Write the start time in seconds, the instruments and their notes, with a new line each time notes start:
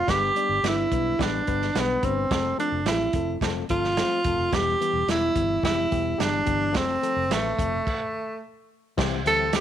Already playing: tenor saxophone F4
0.07 fingered electric bass G1, reed electric piano G3 B3 D4 B4, tenor saxophone G4, kick, snare, closed hi-hat
0.36 reed electric piano G3 B3 D4 D5, closed hi-hat
0.49 fingered electric bass G1
0.63 fingered electric bass G1, reed electric piano G3 B3 D4 B4, snare, closed hi-hat
0.68 tenor saxophone E4
0.91 fingered electric bass B1, reed electric piano G3 B3 D4 B4, kick, closed hi-hat
1.19 fingered electric bass A1, reed electric piano G3 B3 D4 B4, tenor saxophone D4, kick, snare, closed hi-hat
1.47 fingered electric bass G1, reed electric piano G3 B3 D4 B4, kick, closed hi-hat
1.62 snare
1.75 fingered electric bass B1, reed electric piano G3 B3 D4 B4, snare, closed hi-hat
1.79 tenor saxophone B3
2.02 fingered electric bass G1, reed electric piano G3 B3 D4 B4, tenor saxophone C4, kick, closed hi-hat
2.31 fingered electric bass F1, reed electric piano F3 A3 C4 A4, kick, snare, closed hi-hat
2.58 reed electric piano F3 A3 C4 A4, tenor saxophone D4, closed hi-hat
2.72 fingered electric bass F1
2.86 fingered electric bass A1, reed electric piano F3 A3 C4 G4, tenor saxophone E4, snare, closed hi-hat
3.13 fingered electric bass F1, reed electric piano F3 A3 C4 A4, kick, closed hi-hat
3.41 fingered electric bass F1, reed electric piano F3 A3 C4 A4, kick, snare, closed hi-hat
3.69 fingered electric bass G1, reed electric piano F3 A3 C4 A4, tenor saxophone F4, kick, closed hi-hat
3.84 snare
3.97 reed electric piano F3 A3 C4 C5, snare, closed hi-hat
4.24 fingered electric bass F1, reed electric piano F3 A3 C4 A4, kick, closed hi-hat
4.38 fingered electric bass F1
4.52 fingered electric bass E1, reed electric piano E3 G3 B3 G4, tenor saxophone G4, kick, snare, closed hi-hat
4.81 reed electric piano E3 G3 B3 G4, closed hi-hat
4.93 fingered electric bass E1
5.07 fingered electric bass E1, reed electric piano E3 G3 B3 E4, tenor saxophone E4, snare, closed hi-hat
5.36 fingered electric bass G1, reed electric piano E3 G3 B3 E4, kick, closed hi-hat
5.63 fingered electric bass F1, reed electric piano E3 G3 B3 G4, tenor saxophone E4, kick, snare, closed hi-hat
5.91 fingered electric bass E1, reed electric piano E3 G3 B3 G4, kick, closed hi-hat
6.18 fingered electric bass G1, reed electric piano E3 G3 B3 G4, tenor saxophone D4, snare, closed hi-hat
6.46 fingered electric bass G1, reed electric piano E3 G3 B3 G4, kick, closed hi-hat
6.73 fingered electric bass F1, reed electric piano F3 A3 C4 A4, tenor saxophone C4, kick, snare, closed hi-hat
7.02 reed electric piano F3 A3 C4 A4, closed hi-hat
7.16 fingered electric bass F1
7.30 fingered electric bass A1, reed electric piano F3 A3 C4 B4, tenor saxophone A3, snare, closed hi-hat
7.58 fingered electric bass F1, reed electric piano F3 A3 C4 A4, kick, closed hi-hat
7.87 kick, crash
8.97 fingered electric bass C2, reed electric piano E3 G3 C4 G4, tonewheel organ C5 E5 G5 C6, kick, snare, crash
9.26 fingered electric bass D2, reed electric piano E3 G3 C4 G4, tenor saxophone A4, closed hi-hat
9.52 reed electric piano E3 G3 C4 G4, tenor saxophone G4, snare, closed hi-hat